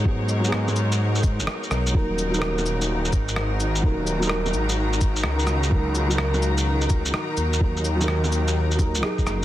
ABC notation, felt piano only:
X:1
M:4/4
L:1/16
Q:"Swing 16ths" 1/4=127
K:D#phr
V:1 name="Felt piano"
[F,B,G]3 [F,B,G]12- [F,B,G] | [F,DA]3 [F,DA]12- [F,DA] | [F,DA]3 [F,DA]12- [F,DA] | [F,DA]3 [F,DA]12- [F,DA] |
[F,DA]3 [F,DA]6- [F,DA] [F,DA]2 [F,DG]4 |]